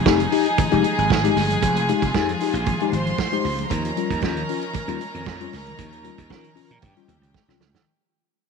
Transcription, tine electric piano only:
0.06 0.20 D#4 medium
0.06 0.20 G4 medium
0.21 0.33 F3 medium
0.32 0.46 D#4 medium
0.32 0.46 G4 medium
0.72 0.84 G#3 medium
0.72 0.84 D#4 medium
0.72 0.84 G4 loud
0.98 1.10 F3 medium
1.24 1.36 G#3 medium
1.24 1.36 D#4 medium
1.24 1.36 G4 medium
1.51 1.62 F3 soft
1.64 1.77 F3 medium
1.78 1.82 D#4 soft
1.78 1.82 G4 soft
1.89 2.02 G#3 medium
1.89 2.02 D#4 medium
1.89 2.02 G4 medium
2.15 2.28 D#4 medium
2.15 2.29 G4 medium
2.30 2.41 F3 medium
2.42 2.55 D#4 medium
2.42 2.55 G4 medium
2.81 2.93 G#3 medium
2.81 2.93 D#4 medium
2.81 2.93 G4 medium
3.07 3.19 F3 medium
3.33 3.45 G#3 medium
3.33 3.45 D#4 medium
3.33 3.45 G4 medium
3.59 3.71 F3 medium
3.72 3.85 D#3 medium
3.85 3.90 C#4 soft
3.85 3.89 F4 soft
3.97 4.10 G3 medium
3.97 4.11 C#4 medium
3.97 4.11 F4 medium
4.23 4.37 C#4 medium
4.23 4.37 F4 medium
4.36 4.48 D#3 medium
4.49 4.63 C#4 medium
4.49 4.63 F4 medium
4.88 5.00 G3 medium
4.88 5.00 C#4 medium
4.88 5.01 F4 loud
5.16 5.27 D#3 medium
5.40 5.53 G3 medium
5.40 5.53 C#4 medium
5.40 5.53 F4 loud
5.67 5.77 D#3 medium
5.78 5.92 D#3 medium
5.93 5.98 C#4 soft
5.93 5.98 F4 soft
6.04 6.18 G3 medium
6.04 6.18 C#4 medium
6.04 6.19 F4 medium
6.30 6.44 C#4 medium
6.30 6.44 F4 medium
6.44 6.56 D#3 medium
6.56 6.70 C#4 medium
6.56 6.70 F4 medium
6.97 7.09 G3 medium
6.97 7.09 C#4 medium
6.97 7.09 F4 medium
7.22 7.35 D#3 medium
7.48 7.61 G3 medium
7.48 7.61 C#4 medium
7.48 7.61 F4 medium
7.75 7.87 D#3 soft

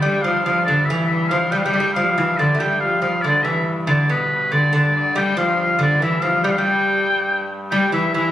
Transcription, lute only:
0.02 0.24 G3 medium
0.24 0.45 F3 medium
0.46 0.67 F3 medium
0.68 0.89 D3 medium
0.90 1.33 E3 medium
1.31 1.51 F3 medium
1.52 1.64 G3 medium
1.66 1.72 G3 medium
1.73 1.79 G3 medium
1.80 1.95 G3 medium
1.96 2.18 F3 medium
2.18 2.39 E3 medium
2.39 2.54 D3 medium
2.55 2.60 A3 medium
2.60 3.01 G3 medium
3.02 3.22 F3 medium
3.24 3.44 D3 medium
3.45 3.65 E3 medium
3.87 4.09 D3 medium
4.09 4.53 B2 medium
4.52 4.72 D3 medium
4.73 5.17 D3 medium
5.16 5.36 G3 medium
5.37 5.81 F3 medium
5.79 6.01 D3 medium
6.02 6.24 E3 medium
6.22 6.44 F3 medium
6.44 6.57 G3 medium
6.58 7.47 G3 medium
7.72 7.94 G3 medium
7.92 8.13 E3 medium
8.14 8.32 E3 medium

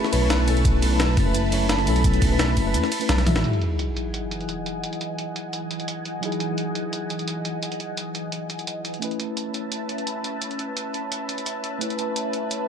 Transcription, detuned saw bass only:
0.13 0.64 B1 medium
0.65 0.81 B1 loud
0.82 1.16 B1 loud
1.17 1.33 F#1 medium
1.35 1.88 F#1 medium
1.87 2.21 B1 loud
2.22 2.56 B1 loud
2.57 2.76 F#1 medium
2.74 2.82 E2 loud
3.09 3.34 B1 loud
3.36 3.43 A1 loud

